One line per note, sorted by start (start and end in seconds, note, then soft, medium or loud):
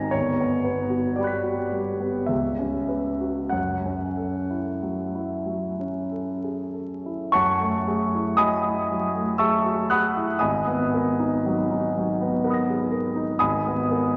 0.00 0.12 G#1 soft
0.00 0.17 C4 soft
0.00 0.15 D#4 soft
0.00 0.17 A#4 soft
0.00 0.17 G#5 medium
0.00 0.14 A#5 medium
0.11 2.25 G1 soft
0.11 1.16 C#5 medium
0.40 0.81 B3 soft
0.64 1.07 B4 soft
0.90 1.33 F#4 soft
1.16 1.61 G3 soft
1.16 2.29 D5 medium
1.16 2.27 G5 soft
1.21 2.28 B5 soft
1.21 2.29 F#6 soft
1.27 2.31 B6 soft
1.43 1.89 F#4 soft
1.72 2.18 G3 soft
2.00 2.30 B3 soft
2.26 3.50 C#2 soft
2.26 3.52 E5 medium
2.59 3.09 C#4 soft
2.89 3.40 B4 soft
3.21 3.54 F#4 soft
3.49 7.28 F#2 soft
3.49 6.73 F#5 medium
3.85 4.37 C#4 soft
4.17 4.69 A4 soft
4.50 5.02 E4 soft
4.83 5.35 F#3 soft
5.15 5.68 E4 soft
5.46 5.98 F#3 soft
5.79 6.30 C#4 soft
6.12 6.62 A4 soft
6.44 6.75 G#4 soft
6.74 7.22 A4 soft
7.06 7.34 E4 soft
7.32 10.38 F#2 medium
7.32 8.36 C#5 medium
7.32 8.36 F#5 medium
7.32 8.36 A5 medium
7.32 8.39 C#6 medium
7.61 8.03 A3 soft
7.88 8.30 G#4 soft
8.15 8.56 E4 soft
8.37 8.81 F#3 soft
8.37 9.36 D#5 medium
8.37 9.36 G#5 medium
8.37 9.36 B5 medium
8.37 9.39 D#6 medium
8.65 9.06 E4 soft
8.91 9.31 F#3 soft
9.15 9.55 A3 soft
9.38 9.80 G#4 soft
9.38 9.86 E5 medium
9.38 9.86 A5 medium
9.38 9.86 C#6 medium
9.38 9.89 E6 medium
9.66 9.90 F#4 soft
9.90 10.32 G#4 soft
9.90 10.38 F#5 medium
9.90 10.38 B5 medium
9.90 10.37 D#6 medium
9.90 10.41 F#6 medium
10.17 10.42 E4 soft
10.39 13.37 G#1 medium
10.39 12.87 D#5 medium
10.39 12.87 G#5 medium
10.39 12.45 B5 medium
10.39 12.49 D#6 medium
10.68 11.09 B3 soft
10.94 11.35 A#4 soft
11.19 11.60 D#4 soft
11.46 11.86 F#3 soft
11.71 12.10 D#4 soft
11.97 12.35 F#3 soft
12.21 12.59 B3 soft
12.44 12.82 A#4 soft
12.44 13.37 F#5 soft
12.44 13.38 B5 soft
12.50 13.38 D#6 soft
12.50 13.42 A#6 soft
12.70 12.93 G#4 soft
12.92 13.31 A#4 soft
13.16 13.41 D#4 soft
13.39 14.17 G#1 soft
13.39 14.17 D#5 medium
13.39 14.17 G#5 medium
13.39 14.17 B5 medium
13.39 14.17 D#6 medium
13.67 14.08 B3 soft
13.91 14.17 A#4 soft